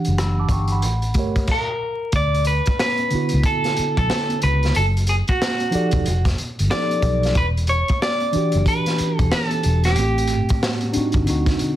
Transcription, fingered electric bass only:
0, 0, Header, 1, 3, 480
1, 0, Start_track
1, 0, Key_signature, 2, "major"
1, 0, Tempo, 652174
1, 1573, Time_signature, 4, 2, 24, 8
1, 8656, End_track
2, 0, Start_track
2, 0, Title_t, "Fingered electric bass"
2, 0, Program_c, 0, 33
2, 56, Note_on_c, 0, 30, 69
2, 336, Note_off_c, 0, 30, 0
2, 364, Note_on_c, 0, 31, 72
2, 623, Note_off_c, 0, 31, 0
2, 623, Note_on_c, 0, 33, 92
2, 852, Note_off_c, 0, 33, 0
2, 852, Note_on_c, 0, 31, 72
2, 1061, Note_off_c, 0, 31, 0
2, 1573, Note_on_c, 0, 38, 78
2, 1910, Note_off_c, 0, 38, 0
2, 2454, Note_on_c, 0, 37, 78
2, 2527, Note_off_c, 0, 37, 0
2, 2928, Note_on_c, 0, 35, 76
2, 3004, Note_off_c, 0, 35, 0
2, 3263, Note_on_c, 0, 37, 89
2, 3467, Note_off_c, 0, 37, 0
2, 3504, Note_on_c, 0, 30, 88
2, 3837, Note_off_c, 0, 30, 0
2, 4368, Note_on_c, 0, 28, 90
2, 4444, Note_off_c, 0, 28, 0
2, 4469, Note_on_c, 0, 29, 115
2, 4670, Note_off_c, 0, 29, 0
2, 4857, Note_on_c, 0, 31, 86
2, 4929, Note_off_c, 0, 31, 0
2, 5177, Note_on_c, 0, 35, 94
2, 5383, Note_off_c, 0, 35, 0
2, 5419, Note_on_c, 0, 28, 86
2, 5754, Note_off_c, 0, 28, 0
2, 6292, Note_on_c, 0, 30, 95
2, 6366, Note_off_c, 0, 30, 0
2, 6772, Note_on_c, 0, 28, 84
2, 6846, Note_off_c, 0, 28, 0
2, 7105, Note_on_c, 0, 28, 96
2, 7342, Note_off_c, 0, 28, 0
2, 7342, Note_on_c, 0, 33, 83
2, 7676, Note_off_c, 0, 33, 0
2, 8208, Note_on_c, 0, 31, 87
2, 8284, Note_off_c, 0, 31, 0
2, 8306, Note_on_c, 0, 38, 86
2, 8508, Note_off_c, 0, 38, 0
2, 8656, End_track
3, 0, Start_track
3, 0, Title_t, "Muted fingered electric bass strokes"
3, 2306, Note_on_c, 9, 29, 46
3, 2380, Note_off_c, 9, 29, 0
3, 2787, Note_on_c, 9, 29, 47
3, 2860, Note_off_c, 9, 29, 0
3, 4228, Note_on_c, 9, 29, 46
3, 4301, Note_off_c, 9, 29, 0
3, 4710, Note_on_c, 9, 29, 50
3, 4784, Note_off_c, 9, 29, 0
3, 6147, Note_on_c, 9, 29, 50
3, 6220, Note_off_c, 9, 29, 0
3, 6624, Note_on_c, 9, 29, 46
3, 6698, Note_off_c, 9, 29, 0
3, 8067, Note_on_c, 9, 29, 51
3, 8140, Note_off_c, 9, 29, 0
3, 8544, Note_on_c, 9, 29, 45
3, 8618, Note_off_c, 9, 29, 0
3, 8656, End_track
0, 0, End_of_file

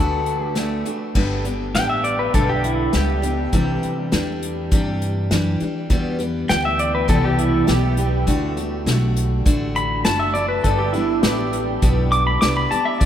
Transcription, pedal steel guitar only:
0, 0, Header, 1, 2, 480
1, 0, Start_track
1, 0, Key_signature, 1, "major"
1, 0, Tempo, 592885
1, 936, Time_signature, 4, 2, 24, 8
1, 10569, End_track
2, 0, Start_track
2, 0, Title_t, "Pedal steel guitar"
2, 0, Program_c, 0, 26
2, 0, Note_on_c, 0, 69, 73
2, 368, Note_off_c, 0, 69, 0
2, 368, Note_on_c, 0, 67, 73
2, 661, Note_off_c, 0, 67, 0
2, 1420, Note_on_c, 0, 79, 96
2, 1531, Note_off_c, 0, 79, 0
2, 1534, Note_on_c, 0, 76, 90
2, 1652, Note_off_c, 0, 76, 0
2, 1652, Note_on_c, 0, 74, 81
2, 1771, Note_off_c, 0, 74, 0
2, 1774, Note_on_c, 0, 71, 72
2, 1892, Note_off_c, 0, 71, 0
2, 1900, Note_on_c, 0, 69, 73
2, 2015, Note_off_c, 0, 69, 0
2, 2019, Note_on_c, 0, 67, 82
2, 2135, Note_off_c, 0, 67, 0
2, 2144, Note_on_c, 0, 64, 82
2, 2374, Note_off_c, 0, 64, 0
2, 2381, Note_on_c, 0, 67, 86
2, 3789, Note_off_c, 0, 67, 0
2, 5258, Note_on_c, 0, 79, 102
2, 5375, Note_off_c, 0, 79, 0
2, 5386, Note_on_c, 0, 76, 92
2, 5499, Note_off_c, 0, 76, 0
2, 5501, Note_on_c, 0, 74, 78
2, 5617, Note_off_c, 0, 74, 0
2, 5624, Note_on_c, 0, 71, 79
2, 5738, Note_off_c, 0, 71, 0
2, 5744, Note_on_c, 0, 69, 92
2, 5859, Note_off_c, 0, 69, 0
2, 5865, Note_on_c, 0, 67, 88
2, 5979, Note_off_c, 0, 67, 0
2, 5985, Note_on_c, 0, 64, 99
2, 6215, Note_off_c, 0, 64, 0
2, 6221, Note_on_c, 0, 67, 89
2, 6686, Note_off_c, 0, 67, 0
2, 7902, Note_on_c, 0, 83, 108
2, 8132, Note_off_c, 0, 83, 0
2, 8136, Note_on_c, 0, 81, 99
2, 8253, Note_on_c, 0, 76, 90
2, 8254, Note_off_c, 0, 81, 0
2, 8368, Note_on_c, 0, 74, 97
2, 8373, Note_off_c, 0, 76, 0
2, 8485, Note_off_c, 0, 74, 0
2, 8488, Note_on_c, 0, 71, 91
2, 8610, Note_off_c, 0, 71, 0
2, 8612, Note_on_c, 0, 69, 89
2, 8730, Note_on_c, 0, 67, 67
2, 8732, Note_off_c, 0, 69, 0
2, 8847, Note_on_c, 0, 64, 83
2, 8851, Note_off_c, 0, 67, 0
2, 9086, Note_off_c, 0, 64, 0
2, 9094, Note_on_c, 0, 67, 100
2, 9562, Note_off_c, 0, 67, 0
2, 9811, Note_on_c, 0, 86, 102
2, 9929, Note_off_c, 0, 86, 0
2, 9932, Note_on_c, 0, 83, 97
2, 10043, Note_off_c, 0, 83, 0
2, 10046, Note_on_c, 0, 86, 92
2, 10169, Note_off_c, 0, 86, 0
2, 10174, Note_on_c, 0, 83, 77
2, 10288, Note_on_c, 0, 81, 79
2, 10293, Note_off_c, 0, 83, 0
2, 10406, Note_on_c, 0, 76, 99
2, 10410, Note_off_c, 0, 81, 0
2, 10521, Note_off_c, 0, 76, 0
2, 10524, Note_on_c, 0, 74, 101
2, 10569, Note_off_c, 0, 74, 0
2, 10569, End_track
0, 0, End_of_file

